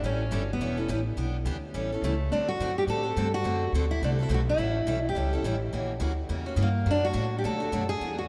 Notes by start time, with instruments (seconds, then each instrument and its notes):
0.02 upright bass A1, steel-string acoustic guitar E3 G3 C#4 E4 A4
0.31 upright bass G1, steel-string acoustic guitar E3 G3 C#4 E4 A4
0.53 steel-string acoustic guitar B3
0.59 upright bass E1, steel-string acoustic guitar E3 G3 C#4 E4 A4
0.77 steel-string acoustic guitar C#4 E4 A4
0.88 upright bass A1, steel-string acoustic guitar E3 G3 C#4 E4 A4
1.16 upright bass B1, steel-string acoustic guitar E3 B3 D4 G4
1.45 upright bass D2, steel-string acoustic guitar E3 B3 D4 G4
1.74 upright bass A1, steel-string acoustic guitar E3 G3 C#4 E4 A4
1.92 steel-string acoustic guitar C#4 E4 A4
2.02 upright bass C#2, steel-string acoustic guitar E3 G3 A3 C#4 E4 A4
2.30 upright bass D2, steel-string acoustic guitar D3 A3 C4 D4 F#4 A4
2.48 steel-string acoustic guitar F#4
2.60 upright bass F#2, steel-string acoustic guitar D3 A3 C4 F#4 A4
2.78 steel-string acoustic guitar G4
2.87 upright bass A2, steel-string acoustic guitar D3 A3 C4 F#4 A4
3.03 steel-string acoustic guitar C4 F#4 A4
3.16 upright bass G2, steel-string acoustic guitar D3 A3 C4 F#4 A4
3.34 steel-string acoustic guitar F#4
3.43 upright bass F#2, steel-string acoustic guitar D3 A3 C4 F#4 A4
3.72 upright bass D2, steel-string acoustic guitar D3 A3 C4 F#4 A4
3.91 steel-string acoustic guitar E4
4.01 upright bass C2, steel-string acoustic guitar D3 A3 C4 D4 F#4 A4
4.19 steel-string acoustic guitar C4 E4 F#4 A4
4.29 upright bass B1, steel-string acoustic guitar D3 A3 C4 F#4 A4
4.34 steel-string acoustic guitar F#4
4.49 steel-string acoustic guitar E4
4.58 upright bass A1, steel-string acoustic guitar E3 G3 C#4 E4 A4
4.86 upright bass B1, steel-string acoustic guitar E3 G3 C#4 E4 A4
5.09 steel-string acoustic guitar G4
5.15 upright bass C#2, steel-string acoustic guitar E3 G3 C#4 E4 A4
5.33 steel-string acoustic guitar C#4 E4 A4
5.42 upright bass A1, steel-string acoustic guitar E3 G3 C#4 E4 A4
5.72 upright bass A#1, steel-string acoustic guitar C#3 E3 A#3 C#4 F#4
6.00 upright bass D2, steel-string acoustic guitar C#3 E3 A#3 C#4 F#4
6.29 upright bass E2, steel-string acoustic guitar C#3 E3 A#3 C#4 F#4
6.46 steel-string acoustic guitar A#3 C#4 F#4
6.56 upright bass G2, steel-string acoustic guitar C#3 E3 A#3 C#4 F#4
6.62 steel-string acoustic guitar A#3
6.86 upright bass F#2, steel-string acoustic guitar B2 F#3 A3 D4 F#4
6.91 steel-string acoustic guitar D4
7.05 steel-string acoustic guitar F#4
7.13 upright bass A2, steel-string acoustic guitar B2 F#3 A3 D4 F#4
7.39 steel-string acoustic guitar G4
7.44 upright bass D2, steel-string acoustic guitar B2 F#3 A3 D4 F#4 A4
7.60 steel-string acoustic guitar A3 D4 F#4
7.72 upright bass F#2, steel-string acoustic guitar B2 F#3 A3 D4 F#4
7.89 steel-string acoustic guitar G#4
8.00 upright bass E2, steel-string acoustic guitar E3 B3 D4 G#4
8.18 steel-string acoustic guitar F#4